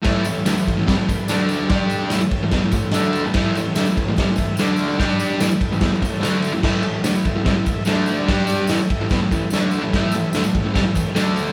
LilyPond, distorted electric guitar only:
\new Staff \with { instrumentName = "Distorted electric guitar" } { \clef bass \time 4/4 \key a \mixolydian \tempo 4 = 146 <a, e a>8 <a, e>8 <d a>16 <a, e>8 <a, e>16 <c g>16 <a, e>8 r16 <d a d'>4 | <g d' g'>4 <a, e>16 r8 <a, e>16 <e b>16 <a, e>16 <a, e>8 <d a d'>8. <a, e>16 | <a, e a>8 <a, e>8 <d a>16 <a, e>8 <a, e>16 <c g>16 <a, e>8 r16 <d a d'>4 | <g d' g'>4 <a, e>16 r8 <a, e>16 <e b>16 <a, e>16 <a, e>8 <d a d'>8. <a, e>16 |
<a, e a>8 <a, e>8 <d a>16 <a, e>8 <a, e>16 <c g>16 <a, e>8 r16 <d a d'>4 | <g d' g'>4 <a, e>16 r8 <a, e>16 <e b>16 <a, e>16 <a, e>8 <d a d'>8. <a, e>16 | <a, e a>8 <a, e>8 <d a>16 <a, e>8 <a, e>16 <c g>16 <a, e>8 r16 <d a d'>4 | }